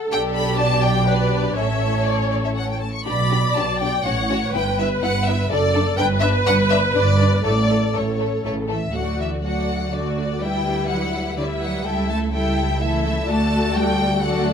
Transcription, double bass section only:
0.11 1.53 B1 medium
1.58 2.83 A1 medium
3.07 3.50 B1 medium
3.56 3.99 B1 medium
4.05 4.48 A1 medium
4.53 4.97 G1 medium
5.03 5.45 G1 medium
5.51 5.93 F#1 medium
5.99 6.41 G1 medium
6.46 6.89 G1 medium
6.95 7.38 G1 medium
7.44 7.89 A1 medium
7.95 8.39 A1 medium
8.45 8.89 A1 medium
8.95 11.82 D2 soft
11.86 13.26 C#2 medium
13.29 14.53 D2 medium

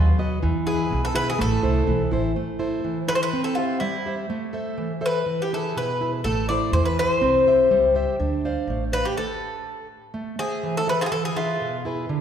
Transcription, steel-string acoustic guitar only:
0.00 0.41 F#3 medium
0.19 0.38 F#4 soft
0.19 0.38 B4 soft
0.19 0.38 D#5 soft
0.43 0.89 E3 medium
0.66 1.05 E4 soft
0.66 1.06 G#4 soft
0.66 1.06 B4 medium
0.90 1.37 B2 medium
1.15 1.34 E4 soft
1.15 1.34 G#4 soft
1.15 1.34 B4 soft
1.39 1.86 A3 medium
1.63 2.02 E4 soft
1.63 2.02 A4 soft
1.63 2.02 C5 medium
1.87 2.34 E3 medium
2.12 2.31 E4 soft
2.12 2.32 A4 soft
2.12 2.32 C5 medium
2.36 2.83 A3 medium
2.59 2.98 E4 soft
2.59 2.98 A4 soft
2.59 2.98 C5 medium
2.84 3.31 E3 medium
3.08 3.27 E4 soft
3.08 3.28 A4 soft
3.08 3.28 C5 soft
3.33 3.80 C4 medium
3.57 3.96 G4 soft
3.57 3.96 C5 soft
3.57 3.96 E5 soft
3.81 4.28 G3 medium
4.06 4.25 G4 soft
4.06 4.26 C5 soft
4.06 4.26 E5 soft
4.30 4.77 A3 medium
4.53 4.92 A4 soft
4.53 4.93 C5 soft
4.53 4.93 E5 medium
4.78 5.25 E3 medium
5.01 5.21 A4 soft
5.01 5.21 C5 soft
5.01 5.21 E5 soft
5.26 5.74 E3 medium
5.53 5.91 E4 soft
5.53 5.91 G#4 soft
5.53 5.91 B4 soft
5.76 6.23 B2 medium
6.01 6.20 E4 soft
6.01 6.20 G#4 soft
6.01 6.21 B4 soft
6.26 6.72 A3 medium
6.50 6.88 E4 soft
6.50 6.89 A4 soft
6.50 6.89 C5 medium
6.74 7.21 E3 medium
6.99 7.18 E4 soft
6.99 7.18 A4 soft
6.99 7.18 C5 soft
7.21 7.69 C4 medium
7.47 7.85 G4 soft
7.47 7.86 C5 soft
7.47 7.86 E5 medium
7.71 8.18 G3 medium
7.95 8.14 G4 soft
7.95 8.15 C5 soft
7.95 8.15 E5 medium
8.20 8.67 D4 medium
8.45 8.84 C5 medium
8.45 8.84 D5 soft
8.45 8.84 F5 soft
8.70 9.16 A3 medium
8.92 9.12 C5 soft
8.92 9.12 D5 soft
8.92 9.12 F5 soft
10.14 10.38 A3 medium
10.39 10.78 A3 soft
10.39 10.78 C5 soft
10.39 10.78 E5 medium
10.63 11.10 E3 medium
10.87 11.07 A4 soft
10.87 11.07 C5 soft
10.87 11.07 E5 soft
11.12 11.59 E3 medium
11.37 11.76 G#4 soft
11.37 11.76 B4 medium
11.37 11.75 E5 soft
11.61 12.08 B2 medium
11.85 12.05 E4 soft
11.85 12.05 G#4 soft
11.85 12.05 B4 soft
12.09 12.21 D3 medium

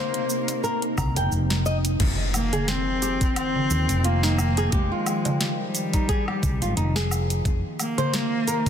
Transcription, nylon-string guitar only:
0.00 0.62 C5 medium
0.64 0.82 A#4 medium
0.98 1.16 A#5 medium
1.17 1.30 G5 loud
1.66 1.77 D#5 medium
2.53 2.67 G#4 medium
3.02 3.20 G4 medium
4.04 4.21 F4 medium
4.23 4.38 D#4 loud
4.58 4.72 G#4 medium
4.73 4.91 G4 medium
4.92 5.58 F4 medium
5.94 6.08 D#4 medium
6.09 6.27 G#4 loud
6.28 6.60 G4 medium
6.62 6.76 F4 medium
6.77 6.95 D#4 medium
6.96 7.45 G#4 medium
7.98 8.13 C5 loud
8.48 8.66 A#4 medium

